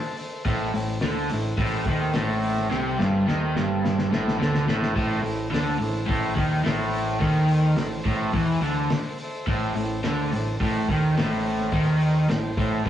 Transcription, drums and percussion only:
0.17 open hi-hat medium
0.45 kick loud
0.45 open hi-hat medium
0.74 open hi-hat medium
1.01 snare loud
1.01 open hi-hat medium
1.29 open hi-hat medium
1.57 kick loud
1.57 open hi-hat medium
1.84 kick loud
1.84 open hi-hat medium
2.13 snare loud
2.13 open hi-hat medium
2.42 open hi-hat medium
2.57 snare soft
2.71 snare medium
3.00 snare medium
3.28 snare medium
3.56 snare medium
3.85 snare medium
3.99 snare medium
4.13 snare medium
4.28 snare medium
4.42 snare loud
4.55 snare medium
4.68 snare loud
4.83 snare medium
4.96 kick loud
4.96 open hi-hat medium
5.26 open hi-hat medium
5.54 snare loud
5.54 open hi-hat medium
5.82 open hi-hat medium
6.09 kick loud
6.09 open hi-hat medium
6.37 kick loud
6.37 open hi-hat medium
6.66 snare loud
6.66 open hi-hat medium
6.93 open hi-hat medium
7.21 kick loud
7.21 open hi-hat medium
7.36 snare soft
7.48 open hi-hat medium
7.76 snare loud
7.76 open hi-hat medium
8.04 kick loud
8.04 open hi-hat medium
8.33 kick loud
8.33 open hi-hat medium
8.61 open hi-hat medium
8.90 snare loud
8.90 open hi-hat medium
9.18 open hi-hat medium
9.47 kick loud
9.47 open hi-hat medium
9.76 open hi-hat medium
10.03 snare loud
10.03 open hi-hat medium
10.32 open hi-hat medium
10.60 kick loud
10.60 open hi-hat medium
10.89 kick loud
10.89 open hi-hat medium
11.17 snare loud
11.17 open hi-hat medium
11.46 open hi-hat medium
11.60 snare soft
11.72 kick loud
11.72 open hi-hat medium
11.86 snare soft
12.00 open hi-hat medium
12.29 snare loud
12.29 open hi-hat medium
12.57 kick loud
12.57 open hi-hat medium
12.86 kick loud

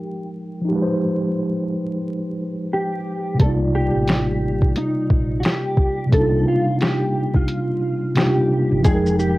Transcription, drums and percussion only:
3.40 kick loud
3.40 closed hi-hat medium
4.08 finger snap medium
4.08 snare medium
4.08 closed hi-hat medium
4.62 kick medium
4.76 closed hi-hat medium
5.10 kick medium
5.43 finger snap medium
5.43 snare loud
5.43 closed hi-hat medium
5.77 kick medium
6.12 kick loud
6.12 closed hi-hat medium
6.81 finger snap medium
6.81 snare medium
6.81 closed hi-hat medium
7.34 kick medium
7.48 closed hi-hat medium
8.15 finger snap medium
8.15 snare loud
8.15 closed hi-hat medium
8.84 kick loud
8.84 closed hi-hat medium
8.84 shaker medium
9.06 shaker soft
9.19 shaker medium

